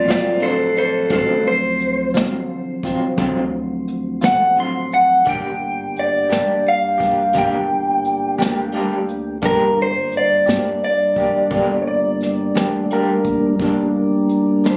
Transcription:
0.00 1.07 F3 medium
0.00 1.07 F#3 medium
0.00 1.07 C4 medium
0.05 1.06 A1 medium
0.05 0.29 C4 soft
0.05 0.28 F4 soft
0.05 0.40 F4 medium
0.05 closed hi-hat medium
0.10 0.29 F#3 soft
0.10 0.42 D5 medium
0.10 snare medium
0.40 0.62 D3 soft
0.40 0.62 F#3 medium
0.40 0.63 C4 soft
0.40 0.63 F4 medium
0.40 0.74 A4 medium
0.40 0.76 C5 medium
0.76 1.09 A4 medium
0.76 1.11 C5 medium
0.76 closed hi-hat soft
1.07 2.11 D2 medium
1.07 1.32 D3 medium
1.07 1.32 F#3 medium
1.07 1.45 G3 medium
1.07 1.45 C#4 medium
1.07 1.44 F#4 soft
1.07 kick medium
1.07 closed hi-hat medium
1.11 1.32 C4 medium
1.11 1.32 F4 medium
1.11 1.44 A4 soft
1.11 1.46 C5 medium
1.41 5.22 F3 medium
1.41 5.22 F#3 medium
1.41 5.21 C4 medium
1.48 2.14 C5 medium
1.80 closed hi-hat medium
2.14 3.15 D3 medium
2.14 2.36 F#3 soft
2.14 2.37 C4 soft
2.14 2.36 F4 soft
2.14 snare medium
2.14 closed hi-hat medium
2.83 3.06 F#3 soft
2.83 3.06 C4 soft
2.83 3.05 F4 soft
2.83 kick medium
2.83 snare soft
2.83 closed hi-hat medium
3.17 4.18 D2 medium
3.17 3.40 D3 medium
3.17 3.40 F#3 medium
3.17 3.40 C4 medium
3.17 3.40 F4 medium
3.17 kick medium
3.17 closed hi-hat medium
3.88 closed hi-hat medium
4.21 5.23 A1 medium
4.21 4.44 F#3 soft
4.21 4.44 C4 soft
4.21 4.43 F4 medium
4.21 4.58 F#5 medium
4.21 snare medium
4.21 closed hi-hat medium
4.57 4.78 D3 soft
4.57 4.78 F#3 medium
4.57 4.79 C4 soft
4.57 4.79 F4 medium
4.57 4.93 C6 medium
4.92 5.27 F#5 medium
4.92 closed hi-hat soft
5.23 6.27 G1 medium
5.23 5.47 G3 medium
5.23 9.38 A#3 medium
5.23 5.47 A#3 medium
5.23 9.38 D4 medium
5.23 5.48 D4 medium
5.23 9.38 G4 medium
5.23 5.48 G4 medium
5.23 kick medium
5.23 closed hi-hat medium
5.29 5.96 G5 medium
5.96 6.65 D5 medium
5.96 closed hi-hat medium
6.29 7.31 G2 medium
6.29 6.52 A#3 soft
6.29 6.51 D4 soft
6.29 6.51 G4 soft
6.29 snare medium
6.29 closed hi-hat medium
6.68 7.35 F5 medium
6.98 7.21 A#3 soft
6.98 7.21 D4 soft
6.98 7.20 G4 soft
6.98 kick medium
6.98 closed hi-hat medium
7.02 snare soft
7.34 8.35 G1 medium
7.34 7.55 G3 medium
7.34 7.56 A#3 medium
7.34 7.56 D4 medium
7.34 7.56 G4 medium
7.34 kick loud
7.34 closed hi-hat medium
7.38 8.72 G5 medium
8.05 closed hi-hat medium
8.38 9.39 D2 medium
8.38 8.60 A#3 soft
8.38 8.60 D4 soft
8.38 8.60 G4 soft
8.38 snare medium
8.38 closed hi-hat medium
8.73 8.94 G3 medium
8.73 8.95 A#3 medium
8.73 8.95 D4 medium
8.73 8.95 G4 medium
9.09 closed hi-hat medium
9.42 10.43 G1 medium
9.42 9.64 G3 medium
9.42 13.56 G3 medium
9.42 9.64 A#3 medium
9.42 13.56 A#3 medium
9.42 13.55 D4 medium
9.42 9.64 D4 medium
9.42 9.64 G4 medium
9.42 9.78 A#4 medium
9.42 kick medium
9.42 closed hi-hat medium
9.82 10.14 C5 medium
10.12 closed hi-hat medium
10.17 10.83 D5 medium
10.46 11.48 G2 medium
10.46 10.69 A#3 soft
10.46 10.69 D4 soft
10.46 10.68 G4 soft
10.46 snare medium
10.46 closed hi-hat medium
10.84 12.88 D5 medium
11.16 11.39 A#3 soft
11.16 11.39 D4 soft
11.16 11.38 G4 soft
11.16 kick medium
11.16 closed hi-hat soft
11.50 12.51 G1 medium
11.50 11.72 G3 medium
11.50 11.72 A#3 medium
11.50 11.73 D4 medium
11.50 11.73 G4 medium
11.50 kick medium
11.50 closed hi-hat medium
11.82 11.86 C#5 medium
11.87 12.88 D5 medium
12.21 snare soft
12.21 closed hi-hat medium
12.55 13.56 D2 medium
12.55 12.77 A#3 soft
12.55 12.77 D4 soft
12.55 12.77 G4 soft
12.55 snare medium
12.55 closed hi-hat medium
12.91 13.12 G3 soft
12.91 13.12 A#3 medium
12.91 13.13 D4 medium
12.91 13.13 G4 medium
12.91 13.42 A#4 medium
13.24 kick medium
13.24 closed hi-hat soft
13.59 14.60 G1 medium
13.59 13.81 G2 medium
13.59 14.77 G3 soft
13.59 13.81 G3 medium
13.59 13.82 A#3 medium
13.59 14.77 A#3 soft
13.59 14.77 D4 soft
13.59 13.82 D4 medium
13.59 kick medium
13.59 closed hi-hat medium
14.29 closed hi-hat soft
14.64 14.77 G2 medium
14.64 14.77 G3 soft
14.64 14.77 A#3 soft
14.64 14.77 D4 soft
14.64 14.69 B4 medium
14.64 snare medium
14.64 closed hi-hat medium
14.70 14.77 C5 medium

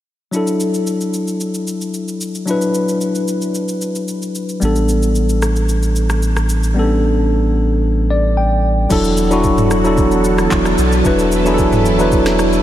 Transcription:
0.31 2.43 F#3 medium
0.31 2.44 D4 medium
0.31 2.44 E4 medium
0.31 shaker medium
0.36 2.45 A4 medium
0.47 shaker medium
0.60 shaker medium
0.74 shaker medium
0.87 shaker medium
1.01 shaker soft
1.14 shaker medium
1.28 shaker soft
1.41 shaker medium
1.54 shaker medium
1.67 shaker medium
1.81 shaker medium
1.94 shaker medium
2.08 shaker soft
2.21 shaker medium
2.35 shaker medium
2.46 4.57 F#3 medium
2.46 4.58 D4 medium
2.46 4.59 E4 medium
2.46 shaker medium
2.51 4.59 B4 medium
2.61 shaker medium
2.74 shaker medium
2.89 shaker medium
3.01 shaker medium
3.15 shaker soft
3.28 shaker medium
3.42 shaker soft
3.55 shaker medium
3.68 shaker medium
3.82 shaker medium
3.95 shaker soft
4.08 shaker medium
4.22 shaker soft
4.35 shaker medium
4.49 shaker soft
4.60 8.87 A1 medium
4.60 6.71 G3 medium
4.60 6.72 B3 medium
4.60 6.73 D4 medium
4.60 shaker medium
4.65 6.74 A4 medium
4.76 shaker medium
4.89 shaker medium
5.03 shaker medium
5.15 shaker medium
5.29 shaker soft
5.42 cross-stick medium
5.42 shaker medium
5.56 shaker soft
5.69 shaker medium
5.83 shaker medium
5.96 shaker medium
6.10 cross-stick medium
6.10 shaker medium
6.22 shaker medium
6.37 cross-stick medium
6.37 shaker soft
6.49 shaker medium
6.63 shaker medium
6.74 8.86 G3 medium
6.74 8.86 B3 medium
6.74 6.84 C#4 medium
6.79 8.88 A4 medium
6.84 8.89 D4 medium
8.10 8.35 D5 medium
8.37 8.87 G5 medium
8.89 10.47 E1 loud
8.89 12.63 E3 medium
8.89 9.22 F#3 medium
8.89 12.63 B3 medium
8.89 12.63 D4 medium
8.89 9.23 D4 medium
8.89 9.23 E4 medium
8.89 11.03 F#4 medium
8.89 12.63 A4 medium
8.89 9.24 A4 medium
8.89 kick loud
8.89 crash medium
8.89 shaker medium
9.04 shaker medium
9.17 shaker medium
9.30 9.73 F#3 medium
9.30 9.74 D4 medium
9.30 9.74 E4 medium
9.30 9.75 F#4 medium
9.30 shaker medium
9.44 kick medium
9.44 shaker medium
9.58 mid tom medium
9.58 shaker medium
9.71 cross-stick medium
9.71 shaker medium
9.84 10.70 F#3 medium
9.84 10.70 D4 medium
9.84 10.71 E4 medium
9.84 10.71 A4 medium
9.84 shaker soft
9.98 kick loud
9.98 shaker medium
10.11 shaker medium
10.25 shaker medium
10.38 cross-stick medium
10.38 shaker medium
10.51 10.76 E1 medium
10.51 kick medium
10.51 clap medium
10.51 shaker medium
10.65 cross-stick medium
10.65 shaker soft
10.78 11.02 B1 loud
10.78 shaker medium
10.92 shaker medium
11.04 12.62 E1 loud
11.04 11.37 F#3 medium
11.04 11.37 D4 medium
11.04 12.63 E4 medium
11.04 11.38 E4 medium
11.04 11.38 B4 medium
11.04 kick loud
11.04 shaker medium
11.19 shaker medium
11.32 shaker medium
11.45 11.88 F#3 medium
11.45 11.88 D4 medium
11.45 11.89 E4 medium
11.45 11.53 G#4 medium
11.45 shaker medium
11.54 11.92 A4 medium
11.58 kick medium
11.58 shaker medium
11.73 mid tom medium
11.73 shaker medium
11.86 shaker medium
11.98 12.63 F#3 medium
11.98 12.63 D4 medium
11.98 12.63 E4 medium
11.98 12.63 B4 medium
11.98 shaker soft
12.12 kick loud
12.12 shaker medium
12.26 cross-stick loud
12.26 snare medium
12.26 shaker medium
12.39 cross-stick medium
12.39 shaker medium
12.53 shaker medium

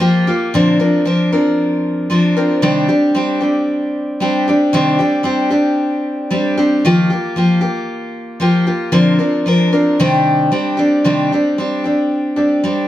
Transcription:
0.00 0.26 F3 medium
0.00 0.26 A#3 medium
0.00 0.26 F4 medium
0.00 0.26 G4 medium
0.27 0.54 A#3 soft
0.27 0.53 F4 medium
0.27 0.53 G4 medium
0.54 0.80 A#2 medium
0.54 0.80 D3 medium
0.54 0.80 F3 medium
0.54 0.79 C4 medium
0.54 0.79 D4 medium
0.54 0.78 A#4 medium
0.80 1.04 F3 medium
0.80 1.05 C4 soft
0.80 1.06 D4 medium
0.80 1.06 A#4 medium
1.05 1.32 F3 medium
1.05 1.32 C4 medium
1.05 1.31 D4 medium
1.05 1.31 A#4 medium
1.32 2.09 F3 soft
1.32 2.10 C4 soft
1.32 2.11 D4 medium
1.32 2.11 A#4 medium
2.10 2.37 F3 medium
2.10 2.36 C4 medium
2.10 2.36 D4 medium
2.10 2.35 A#4 medium
2.37 2.62 F3 soft
2.37 2.62 C4 medium
2.37 2.62 D4 medium
2.37 2.63 A#4 medium
2.62 2.89 C3 medium
2.62 2.89 D#3 medium
2.62 2.89 G3 medium
2.62 2.88 C4 medium
2.62 2.88 D4 medium
2.62 2.87 G4 medium
2.88 3.13 G3 soft
2.88 3.14 C4 soft
2.88 3.15 D4 medium
2.88 3.15 G4 medium
3.15 3.42 G3 medium
3.15 3.41 C4 medium
3.15 3.41 D4 medium
3.15 3.39 G4 medium
3.41 4.20 G3 soft
3.41 4.21 C4 soft
3.41 4.20 D4 soft
3.41 4.22 G4 medium
4.20 4.47 G3 medium
4.20 4.48 C4 medium
4.20 4.48 D4 medium
4.20 4.46 G4 medium
4.48 4.73 G3 soft
4.48 4.73 C4 medium
4.48 4.73 D4 medium
4.48 4.73 G4 medium
4.73 5.00 C3 medium
4.73 5.00 D#3 medium
4.73 4.99 G3 medium
4.73 4.99 C4 medium
4.73 4.99 D4 loud
4.73 4.98 G4 medium
4.99 5.22 G3 medium
4.99 5.23 C4 medium
4.99 5.24 D4 medium
4.99 5.24 G4 medium
5.23 5.51 G3 medium
5.23 5.51 C4 medium
5.23 5.50 D4 medium
5.23 5.49 G4 medium
5.50 6.29 G3 soft
5.50 6.30 C4 medium
5.50 6.31 D4 medium
5.50 6.30 G4 medium
6.31 6.57 G3 medium
6.31 6.58 C4 medium
6.31 6.56 D4 medium
6.31 6.56 G4 medium
6.57 6.85 G3 soft
6.57 6.84 C4 medium
6.57 6.84 D4 medium
6.57 6.84 G4 medium
6.85 7.10 D#3 medium
6.85 7.11 F3 medium
6.85 7.11 A#3 medium
6.85 7.11 F4 loud
6.85 7.09 G4 medium
7.10 7.36 A#3 medium
7.10 7.36 F4 medium
7.10 7.36 G4 medium
7.36 7.62 F3 medium
7.36 7.62 A#3 medium
7.36 7.61 F4 medium
7.36 7.60 G4 medium
7.61 8.40 A#3 soft
7.61 8.40 F4 medium
7.61 8.40 G4 medium
8.40 8.67 F3 medium
8.40 8.66 A#3 medium
8.40 8.66 F4 medium
8.40 8.65 G4 medium
8.67 8.92 A#3 soft
8.67 8.93 F4 medium
8.67 8.92 G4 medium
8.92 9.19 A#2 medium
8.92 9.19 D3 medium
8.92 9.19 F3 medium
8.92 9.19 C4 medium
8.92 9.18 D4 medium
8.92 9.18 A#4 loud
9.19 9.45 F3 soft
9.19 9.46 C4 medium
9.19 9.46 D4 medium
9.19 9.46 A#4 medium
9.46 9.72 F3 medium
9.46 9.73 C4 medium
9.46 9.72 D4 medium
9.46 9.71 A#4 medium
9.72 10.00 F3 medium
9.72 9.99 C4 soft
9.72 9.99 D4 medium
9.72 9.99 A#4 medium
9.99 10.52 C3 medium
9.99 10.52 D#3 medium
9.99 10.50 G3 medium
9.99 10.51 C4 loud
9.99 10.51 D4 medium
9.99 10.51 G4 loud
10.52 10.78 G3 medium
10.52 10.78 C4 medium
10.52 10.77 D4 medium
10.52 10.76 G4 medium
10.77 11.04 G3 medium
10.77 11.04 C4 medium
10.77 11.04 D4 medium
10.77 11.04 G4 medium
11.04 11.31 C3 medium
11.04 11.31 D#3 medium
11.04 11.31 G3 medium
11.04 11.31 C4 medium
11.04 11.31 D4 medium
11.04 11.31 G4 medium
11.32 11.57 G3 soft
11.32 11.57 C4 soft
11.32 11.58 D4 soft
11.32 11.58 G4 soft
11.58 11.84 G3 medium
11.58 11.84 C4 medium
11.58 11.84 D4 medium
11.58 11.83 G4 medium
11.84 12.38 G3 soft
11.84 12.36 C4 soft
11.84 12.35 D4 soft
11.84 12.36 G4 soft
12.36 12.62 G3 soft
12.36 12.63 C4 soft
12.36 12.63 D4 medium
12.36 12.63 G4 soft
12.64 12.88 G3 medium
12.64 12.88 C4 medium
12.64 12.88 D4 medium
12.64 12.88 G4 medium

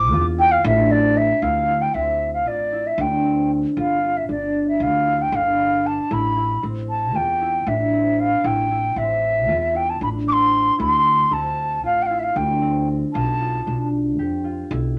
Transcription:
0.00 0.12 A1 medium
0.00 0.90 C4 medium
0.00 0.63 D4 medium
0.00 0.19 E4 medium
0.00 0.26 D6 medium
0.12 0.56 E2 loud
0.12 0.44 F4 medium
0.38 1.42 E4 medium
0.38 0.53 G5 loud
0.52 0.64 F5 medium
0.64 1.30 A1 loud
0.64 2.98 D4 medium
0.64 0.93 E5 medium
0.90 1.94 C4 medium
0.90 1.19 D5 medium
1.17 1.44 E5 medium
1.42 1.86 D2 medium
1.42 1.68 E4 medium
1.42 1.83 F5 medium
1.68 2.52 E4 medium
1.82 1.96 G5 medium
1.94 2.46 D2 medium
1.94 3.24 C4 medium
1.94 2.33 E5 medium
2.34 2.49 F5 medium
2.46 2.90 A1 medium
2.46 2.78 F4 medium
2.46 2.88 D5 medium
2.72 3.83 E4 medium
2.87 3.02 E5 medium
2.98 3.63 D2 medium
2.98 4.28 D4 medium
2.98 3.52 G5 medium
3.25 5.65 C4 medium
3.77 4.20 G1 medium
3.77 4.02 F4 medium
3.77 4.19 F5 medium
4.03 4.80 F4 medium
4.17 4.29 E5 medium
4.29 4.82 G1 medium
4.29 5.32 D4 medium
4.29 4.66 D5 medium
4.68 4.84 E5 medium
4.80 5.24 D2 medium
4.80 5.12 F4 medium
4.80 5.23 F5 medium
5.06 6.10 E4 medium
5.22 5.37 G5 medium
5.32 5.98 G1 medium
5.32 7.67 D4 medium
5.32 5.88 F5 medium
5.59 6.68 B3 medium
5.86 6.15 A5 medium
6.11 6.54 A1 medium
6.11 6.36 E4 medium
6.11 6.64 B5 medium
6.36 7.21 E4 medium
6.62 7.15 A1 medium
6.62 7.92 C4 medium
6.90 7.17 A5 medium
7.15 7.59 E2 medium
7.15 7.47 F4 medium
7.15 7.70 G5 medium
7.41 8.44 E4 medium
7.66 8.32 A1 medium
7.66 10.01 D4 medium
7.66 8.21 E5 medium
7.93 8.96 C4 medium
8.20 8.48 F5 medium
8.44 8.88 A1 medium
8.44 8.70 E4 medium
8.44 8.99 G5 medium
8.71 9.54 E4 medium
8.96 9.49 A1 medium
8.96 10.26 C4 medium
8.96 9.78 E5 medium
9.48 9.93 E2 medium
9.48 9.80 F4 medium
9.74 10.78 E4 medium
9.74 9.91 G5 medium
9.90 10.02 A5 medium
10.01 10.67 A1 medium
10.01 12.35 D4 medium
10.01 10.09 B5 medium
10.27 11.31 C4 medium
10.27 10.34 D6 medium
10.33 10.76 C6 loud
10.78 11.23 D2 medium
10.78 11.05 E4 medium
10.78 11.35 C6 medium
11.05 11.90 E4 medium
11.31 11.84 D2 medium
11.31 12.61 C4 medium
11.31 11.85 A5 medium
11.84 12.28 A1 medium
11.84 12.16 F4 medium
11.84 12.03 F5 medium
12.02 12.20 F5 medium
12.02 12.07 G5 medium
12.10 13.20 E4 medium
12.19 12.24 E5 medium
12.19 12.38 F5 medium
12.36 13.02 D2 medium
12.36 13.66 D4 medium
12.36 12.89 G5 medium
12.62 14.99 C4 medium
13.14 13.58 B1 medium
13.14 13.40 F4 medium
13.14 13.88 A5 medium
13.40 14.44 F4 medium
13.67 14.19 B1 medium
13.67 14.96 D4 medium
14.19 14.62 F2 medium
14.19 14.99 G4 medium
14.44 14.77 F4 medium
14.71 14.99 B1 medium
14.71 14.99 E4 medium

